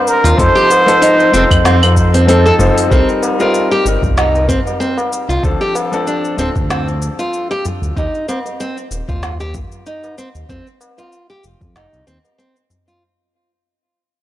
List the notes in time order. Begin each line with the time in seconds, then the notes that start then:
Already playing: G3 D4 D#4 A#4 D5
0.06 A#4, shaker
0.24 D#2 F4, open hi-hat, shaker
0.37 F2 F3 C4 D#4 A4 C5, kick, open hi-hat, shaker
0.55 G4, shaker
0.70 open hi-hat, tabla na, shaker
0.86 F3 C4 D#4 A4, open hi-hat, tabla tin, shaker
1.02 D#4, open hi-hat, shaker
1.20 shaker
1.32 F1 F3 C4 D#4 A4, open hi-hat, tabla tin, shaker
1.51 F2, kick, open hi-hat, tabla na, tabla ge, claves, shaker
1.65 C4, snare, open hi-hat, shaker
1.83 open hi-hat, tabla na, claves, shaker
1.96 F2, kick, shaker
2.14 C4, open hi-hat, tabla na, tabla tin, shaker
2.27 F3 C4 D#4 A4, open hi-hat, shaker
2.46 A4, shaker
2.59 F1 F3 C4 D#4 C5, tabla na, tabla ge, shaker
2.78 open hi-hat, shaker
2.90 C2 G3 C4 D#4 A#4, kick, shaker
3.09 shaker
3.23 tabla na, shaker
3.39 G3 C4 D#4 F4 A#4, tabla tin, shaker
3.54 shaker
3.71 G4, shaker
3.84 G1 G3 C4 D#4, tabla tin, shaker
3.88 A#4
4.02 C2, kick, tabla ge, shaker
4.17 D#4, snare, shaker
4.35 tabla tin, shaker
4.48 C4, kick, tabla tin, tabla ge, shaker
4.67 tabla na, shaker
4.80 C4, tabla tin, shaker
4.97 tabla na, shaker
5.13 shaker
5.29 C2 F4, shaker
5.43 D2 F3 C4 D4 A4, kick, shaker
5.61 G4, shaker
5.75 tabla na, shaker
5.92 F3 C4 D4 A4, tabla tin, shaker
6.07 D4, shaker
6.25 shaker
6.37 D1 F3 C4 D4, tabla tin, shaker
6.41 A4
6.55 D2, kick, tabla ge, shaker
6.70 C4, snare, shaker
6.88 shaker
7.02 shaker
7.19 F4, tabla tin, shaker
7.33 shaker
7.51 G4, shaker
7.65 tabla ge, shaker
7.82 D2, shaker
7.97 D#2 D#4, kick, shaker
8.15 shaker
8.28 C4, tabla na, shaker
8.46 tabla tin, shaker
8.60 C4, shaker
8.78 shaker
8.91 D#1, tabla tin, shaker
9.09 D#2 F4, kick, tabla ge, shaker
9.23 snare, shaker
9.40 G4, tabla tin, shaker
9.54 kick, tabla tin, tabla ge, shaker
9.72 tabla na, shaker
9.86 D#4, tabla tin, shaker
10.04 tabla na, shaker
10.18 C4, shaker
10.35 D#2, shaker
10.49 F2 C4, kick, shaker
10.67 shaker
10.81 tabla na, shaker
10.98 F4, tabla tin, shaker
11.12 shaker
11.30 G4, shaker
11.44 F1, tabla tin, shaker
11.61 F2, kick, tabla ge, shaker
11.76 F1 D#4, snare, shaker
11.93 C2, shaker
12.07 D#2 C4, shaker
12.24 tabla na, tabla tin, shaker
12.38 C4, shaker
12.56 shaker
12.70 tabla ge, shaker
12.88 F4, shaker